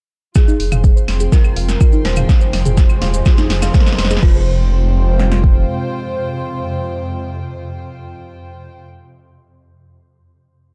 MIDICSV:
0, 0, Header, 1, 10, 480
1, 0, Start_track
1, 0, Key_signature, -4, "minor"
1, 0, Tempo, 483871
1, 353, Time_signature, 4, 2, 24, 8
1, 10658, End_track
2, 0, Start_track
2, 0, Title_t, "String section"
2, 0, Program_c, 0, 48
2, 352, Note_on_c, 0, 65, 67
2, 540, Note_on_c, 0, 84, 73
2, 1070, Note_on_c, 0, 79, 84
2, 2331, Note_on_c, 0, 68, 74
2, 3038, Note_off_c, 0, 79, 0
2, 3041, Note_off_c, 0, 65, 0
2, 3041, Note_off_c, 0, 84, 0
2, 3136, Note_on_c, 0, 75, 87
2, 4193, Note_off_c, 0, 75, 0
2, 4194, Note_off_c, 0, 68, 0
2, 4196, Note_on_c, 0, 65, 79
2, 4267, Note_on_c, 0, 72, 79
2, 4339, Note_on_c, 0, 79, 79
2, 8651, Note_off_c, 0, 65, 0
2, 8722, Note_off_c, 0, 72, 0
2, 8788, Note_off_c, 0, 79, 0
2, 10658, End_track
3, 0, Start_track
3, 0, Title_t, "Analog synth lead"
3, 0, Program_c, 1, 81
3, 353, Note_on_c, 1, 68, 107
3, 1217, Note_off_c, 1, 68, 0
3, 1313, Note_on_c, 1, 70, 101
3, 2032, Note_on_c, 1, 72, 107
3, 2047, Note_off_c, 1, 70, 0
3, 4097, Note_off_c, 1, 72, 0
3, 4193, Note_on_c, 1, 72, 112
3, 8648, Note_off_c, 1, 72, 0
3, 10658, End_track
4, 0, Start_track
4, 0, Title_t, "Synth bell"
4, 0, Program_c, 2, 98
4, 352, Note_on_c, 2, 68, 91
4, 1217, Note_off_c, 2, 68, 0
4, 1313, Note_on_c, 2, 70, 91
4, 2033, Note_off_c, 2, 70, 0
4, 2033, Note_on_c, 2, 72, 90
4, 4097, Note_off_c, 2, 72, 0
4, 4194, Note_on_c, 2, 72, 93
4, 8649, Note_off_c, 2, 72, 0
4, 10658, End_track
5, 0, Start_track
5, 0, Title_t, "Synth arpeggio sound"
5, 0, Program_c, 3, 84
5, 353, Note_on_c, 3, 65, 98
5, 445, Note_off_c, 3, 65, 0
5, 474, Note_on_c, 3, 63, 99
5, 535, Note_off_c, 3, 63, 0
5, 714, Note_on_c, 3, 77, 101
5, 775, Note_off_c, 3, 77, 0
5, 954, Note_on_c, 3, 72, 71
5, 1015, Note_off_c, 3, 72, 0
5, 1194, Note_on_c, 3, 68, 73
5, 1230, Note_off_c, 3, 68, 0
5, 1313, Note_on_c, 3, 65, 81
5, 1375, Note_off_c, 3, 65, 0
5, 1553, Note_on_c, 3, 77, 75
5, 1614, Note_off_c, 3, 77, 0
5, 1793, Note_on_c, 3, 65, 103
5, 1885, Note_off_c, 3, 65, 0
5, 1913, Note_on_c, 3, 63, 97
5, 1974, Note_off_c, 3, 63, 0
5, 2153, Note_on_c, 3, 77, 105
5, 2214, Note_off_c, 3, 77, 0
5, 2393, Note_on_c, 3, 72, 77
5, 2454, Note_off_c, 3, 72, 0
5, 2633, Note_on_c, 3, 68, 77
5, 2670, Note_off_c, 3, 68, 0
5, 2754, Note_on_c, 3, 65, 82
5, 2815, Note_off_c, 3, 65, 0
5, 2993, Note_on_c, 3, 77, 79
5, 3054, Note_off_c, 3, 77, 0
5, 3232, Note_on_c, 3, 65, 102
5, 3324, Note_off_c, 3, 65, 0
5, 3353, Note_on_c, 3, 63, 102
5, 3414, Note_off_c, 3, 63, 0
5, 3593, Note_on_c, 3, 77, 106
5, 3654, Note_off_c, 3, 77, 0
5, 3833, Note_on_c, 3, 72, 75
5, 3894, Note_off_c, 3, 72, 0
5, 4073, Note_on_c, 3, 68, 80
5, 4110, Note_off_c, 3, 68, 0
5, 4193, Note_on_c, 3, 65, 96
5, 4416, Note_off_c, 3, 65, 0
5, 10658, End_track
6, 0, Start_track
6, 0, Title_t, "Analog synth pad"
6, 0, Program_c, 4, 89
6, 354, Note_on_c, 4, 56, 75
6, 354, Note_on_c, 4, 60, 72
6, 354, Note_on_c, 4, 72, 90
6, 355, Note_on_c, 4, 53, 80
6, 355, Note_on_c, 4, 68, 72
6, 2255, Note_off_c, 4, 53, 0
6, 2255, Note_off_c, 4, 60, 0
6, 2255, Note_off_c, 4, 72, 0
6, 2273, Note_on_c, 4, 53, 83
6, 4156, Note_off_c, 4, 56, 0
6, 4156, Note_off_c, 4, 68, 0
6, 4174, Note_off_c, 4, 53, 0
6, 4193, Note_on_c, 4, 60, 77
6, 4193, Note_on_c, 4, 65, 76
6, 4193, Note_on_c, 4, 77, 92
6, 4194, Note_on_c, 4, 56, 85
6, 4194, Note_on_c, 4, 72, 78
6, 8648, Note_off_c, 4, 60, 0
6, 8648, Note_off_c, 4, 65, 0
6, 8648, Note_off_c, 4, 77, 0
6, 8649, Note_off_c, 4, 56, 0
6, 8649, Note_off_c, 4, 72, 0
6, 10658, End_track
7, 0, Start_track
7, 0, Title_t, "Synth drone"
7, 0, Program_c, 5, 95
7, 353, Note_on_c, 5, 41, 78
7, 353, Note_on_c, 5, 48, 77
7, 4183, Note_off_c, 5, 41, 0
7, 4183, Note_off_c, 5, 48, 0
7, 4194, Note_on_c, 5, 48, 81
7, 4195, Note_on_c, 5, 41, 80
7, 8649, Note_off_c, 5, 48, 0
7, 8650, Note_off_c, 5, 41, 0
7, 10658, End_track
8, 0, Start_track
8, 0, Title_t, "Detuned saw bass"
8, 0, Program_c, 6, 39
8, 594, Note_on_c, 6, 29, 98
8, 690, Note_off_c, 6, 29, 0
8, 713, Note_on_c, 6, 29, 93
8, 906, Note_off_c, 6, 29, 0
8, 1073, Note_on_c, 6, 29, 94
8, 1266, Note_off_c, 6, 29, 0
8, 1553, Note_on_c, 6, 29, 95
8, 1745, Note_off_c, 6, 29, 0
8, 2033, Note_on_c, 6, 27, 107
8, 2225, Note_off_c, 6, 27, 0
8, 2513, Note_on_c, 6, 29, 90
8, 2610, Note_off_c, 6, 29, 0
8, 2633, Note_on_c, 6, 29, 82
8, 2825, Note_off_c, 6, 29, 0
8, 2993, Note_on_c, 6, 27, 91
8, 3185, Note_off_c, 6, 27, 0
8, 3473, Note_on_c, 6, 29, 84
8, 3665, Note_off_c, 6, 29, 0
8, 3953, Note_on_c, 6, 29, 98
8, 4146, Note_off_c, 6, 29, 0
8, 4193, Note_on_c, 6, 29, 96
8, 5594, Note_off_c, 6, 29, 0
8, 10658, End_track
9, 0, Start_track
9, 0, Title_t, "Riser"
9, 0, Program_c, 7, 103
9, 353, Note_on_c, 7, 60, 75
9, 4193, Note_off_c, 7, 60, 0
9, 10658, End_track
10, 0, Start_track
10, 0, Title_t, "Drums"
10, 346, Note_on_c, 9, 70, 63
10, 353, Note_on_c, 9, 36, 110
10, 354, Note_on_c, 9, 38, 45
10, 354, Note_on_c, 9, 42, 32
10, 354, Note_on_c, 9, 75, 45
10, 445, Note_off_c, 9, 70, 0
10, 452, Note_off_c, 9, 36, 0
10, 453, Note_off_c, 9, 38, 0
10, 453, Note_off_c, 9, 42, 0
10, 453, Note_off_c, 9, 75, 0
10, 478, Note_on_c, 9, 70, 39
10, 577, Note_off_c, 9, 70, 0
10, 594, Note_on_c, 9, 46, 98
10, 693, Note_off_c, 9, 46, 0
10, 714, Note_on_c, 9, 42, 45
10, 714, Note_on_c, 9, 47, 80
10, 714, Note_on_c, 9, 70, 72
10, 714, Note_on_c, 9, 75, 49
10, 813, Note_off_c, 9, 42, 0
10, 813, Note_off_c, 9, 47, 0
10, 813, Note_off_c, 9, 70, 0
10, 813, Note_off_c, 9, 75, 0
10, 832, Note_on_c, 9, 70, 59
10, 833, Note_on_c, 9, 36, 111
10, 834, Note_on_c, 9, 42, 32
10, 931, Note_off_c, 9, 70, 0
10, 932, Note_off_c, 9, 36, 0
10, 933, Note_off_c, 9, 42, 0
10, 961, Note_on_c, 9, 70, 40
10, 1060, Note_off_c, 9, 70, 0
10, 1073, Note_on_c, 9, 38, 52
10, 1073, Note_on_c, 9, 46, 100
10, 1073, Note_on_c, 9, 75, 48
10, 1173, Note_off_c, 9, 38, 0
10, 1173, Note_off_c, 9, 46, 0
10, 1173, Note_off_c, 9, 75, 0
10, 1192, Note_on_c, 9, 70, 74
10, 1193, Note_on_c, 9, 42, 44
10, 1291, Note_off_c, 9, 70, 0
10, 1292, Note_off_c, 9, 42, 0
10, 1313, Note_on_c, 9, 36, 114
10, 1313, Note_on_c, 9, 38, 58
10, 1313, Note_on_c, 9, 42, 34
10, 1314, Note_on_c, 9, 70, 68
10, 1412, Note_off_c, 9, 36, 0
10, 1412, Note_off_c, 9, 38, 0
10, 1412, Note_off_c, 9, 42, 0
10, 1413, Note_off_c, 9, 70, 0
10, 1433, Note_on_c, 9, 70, 37
10, 1433, Note_on_c, 9, 75, 49
10, 1532, Note_off_c, 9, 70, 0
10, 1533, Note_off_c, 9, 75, 0
10, 1552, Note_on_c, 9, 46, 104
10, 1651, Note_off_c, 9, 46, 0
10, 1672, Note_on_c, 9, 38, 53
10, 1672, Note_on_c, 9, 42, 43
10, 1675, Note_on_c, 9, 70, 67
10, 1772, Note_off_c, 9, 38, 0
10, 1772, Note_off_c, 9, 42, 0
10, 1774, Note_off_c, 9, 70, 0
10, 1793, Note_on_c, 9, 36, 120
10, 1793, Note_on_c, 9, 42, 33
10, 1793, Note_on_c, 9, 70, 67
10, 1793, Note_on_c, 9, 75, 49
10, 1892, Note_off_c, 9, 36, 0
10, 1892, Note_off_c, 9, 42, 0
10, 1892, Note_off_c, 9, 70, 0
10, 1892, Note_off_c, 9, 75, 0
10, 1909, Note_on_c, 9, 70, 40
10, 2009, Note_off_c, 9, 70, 0
10, 2033, Note_on_c, 9, 38, 69
10, 2033, Note_on_c, 9, 46, 102
10, 2132, Note_off_c, 9, 38, 0
10, 2132, Note_off_c, 9, 46, 0
10, 2145, Note_on_c, 9, 70, 70
10, 2153, Note_on_c, 9, 42, 45
10, 2153, Note_on_c, 9, 47, 78
10, 2153, Note_on_c, 9, 75, 49
10, 2244, Note_off_c, 9, 70, 0
10, 2253, Note_off_c, 9, 42, 0
10, 2253, Note_off_c, 9, 47, 0
10, 2253, Note_off_c, 9, 75, 0
10, 2273, Note_on_c, 9, 36, 117
10, 2273, Note_on_c, 9, 38, 72
10, 2273, Note_on_c, 9, 42, 33
10, 2274, Note_on_c, 9, 70, 64
10, 2372, Note_off_c, 9, 36, 0
10, 2372, Note_off_c, 9, 38, 0
10, 2372, Note_off_c, 9, 42, 0
10, 2373, Note_off_c, 9, 70, 0
10, 2391, Note_on_c, 9, 70, 42
10, 2490, Note_off_c, 9, 70, 0
10, 2513, Note_on_c, 9, 38, 74
10, 2513, Note_on_c, 9, 46, 109
10, 2513, Note_on_c, 9, 75, 48
10, 2612, Note_off_c, 9, 38, 0
10, 2612, Note_off_c, 9, 46, 0
10, 2612, Note_off_c, 9, 75, 0
10, 2633, Note_on_c, 9, 42, 46
10, 2633, Note_on_c, 9, 47, 81
10, 2636, Note_on_c, 9, 70, 74
10, 2732, Note_off_c, 9, 42, 0
10, 2732, Note_off_c, 9, 47, 0
10, 2735, Note_off_c, 9, 70, 0
10, 2750, Note_on_c, 9, 70, 71
10, 2752, Note_on_c, 9, 38, 75
10, 2752, Note_on_c, 9, 42, 34
10, 2753, Note_on_c, 9, 36, 122
10, 2850, Note_off_c, 9, 70, 0
10, 2852, Note_off_c, 9, 36, 0
10, 2852, Note_off_c, 9, 38, 0
10, 2852, Note_off_c, 9, 42, 0
10, 2872, Note_on_c, 9, 70, 38
10, 2873, Note_on_c, 9, 75, 50
10, 2971, Note_off_c, 9, 70, 0
10, 2972, Note_off_c, 9, 75, 0
10, 2992, Note_on_c, 9, 38, 84
10, 2992, Note_on_c, 9, 46, 111
10, 3092, Note_off_c, 9, 38, 0
10, 3092, Note_off_c, 9, 46, 0
10, 3112, Note_on_c, 9, 42, 46
10, 3113, Note_on_c, 9, 70, 85
10, 3212, Note_off_c, 9, 42, 0
10, 3212, Note_off_c, 9, 70, 0
10, 3229, Note_on_c, 9, 70, 71
10, 3233, Note_on_c, 9, 36, 121
10, 3233, Note_on_c, 9, 38, 93
10, 3233, Note_on_c, 9, 42, 35
10, 3233, Note_on_c, 9, 75, 52
10, 3328, Note_off_c, 9, 70, 0
10, 3332, Note_off_c, 9, 36, 0
10, 3332, Note_off_c, 9, 38, 0
10, 3332, Note_off_c, 9, 42, 0
10, 3332, Note_off_c, 9, 75, 0
10, 3352, Note_on_c, 9, 70, 41
10, 3353, Note_on_c, 9, 38, 82
10, 3451, Note_off_c, 9, 70, 0
10, 3453, Note_off_c, 9, 38, 0
10, 3472, Note_on_c, 9, 38, 94
10, 3472, Note_on_c, 9, 46, 112
10, 3572, Note_off_c, 9, 38, 0
10, 3572, Note_off_c, 9, 46, 0
10, 3593, Note_on_c, 9, 38, 83
10, 3593, Note_on_c, 9, 46, 65
10, 3593, Note_on_c, 9, 75, 50
10, 3594, Note_on_c, 9, 70, 90
10, 3692, Note_off_c, 9, 38, 0
10, 3692, Note_off_c, 9, 46, 0
10, 3692, Note_off_c, 9, 75, 0
10, 3693, Note_off_c, 9, 70, 0
10, 3712, Note_on_c, 9, 70, 71
10, 3713, Note_on_c, 9, 36, 127
10, 3713, Note_on_c, 9, 38, 100
10, 3713, Note_on_c, 9, 42, 34
10, 3773, Note_off_c, 9, 38, 0
10, 3773, Note_on_c, 9, 38, 92
10, 3811, Note_off_c, 9, 70, 0
10, 3812, Note_off_c, 9, 42, 0
10, 3813, Note_off_c, 9, 36, 0
10, 3833, Note_off_c, 9, 38, 0
10, 3833, Note_on_c, 9, 38, 88
10, 3837, Note_on_c, 9, 70, 40
10, 3893, Note_off_c, 9, 38, 0
10, 3893, Note_on_c, 9, 38, 88
10, 3936, Note_off_c, 9, 70, 0
10, 3953, Note_off_c, 9, 38, 0
10, 3953, Note_on_c, 9, 38, 112
10, 3953, Note_on_c, 9, 46, 113
10, 3953, Note_on_c, 9, 75, 53
10, 4014, Note_off_c, 9, 38, 0
10, 4014, Note_on_c, 9, 38, 95
10, 4052, Note_off_c, 9, 46, 0
10, 4052, Note_off_c, 9, 75, 0
10, 4071, Note_on_c, 9, 70, 77
10, 4073, Note_off_c, 9, 38, 0
10, 4073, Note_on_c, 9, 38, 94
10, 4073, Note_on_c, 9, 42, 44
10, 4134, Note_off_c, 9, 38, 0
10, 4134, Note_on_c, 9, 38, 95
10, 4170, Note_off_c, 9, 70, 0
10, 4173, Note_off_c, 9, 42, 0
10, 4194, Note_on_c, 9, 36, 109
10, 4194, Note_on_c, 9, 49, 85
10, 4233, Note_off_c, 9, 38, 0
10, 4293, Note_off_c, 9, 36, 0
10, 4293, Note_off_c, 9, 49, 0
10, 5153, Note_on_c, 9, 38, 62
10, 5253, Note_off_c, 9, 38, 0
10, 5274, Note_on_c, 9, 38, 76
10, 5373, Note_off_c, 9, 38, 0
10, 5394, Note_on_c, 9, 36, 91
10, 5493, Note_off_c, 9, 36, 0
10, 10658, End_track
0, 0, End_of_file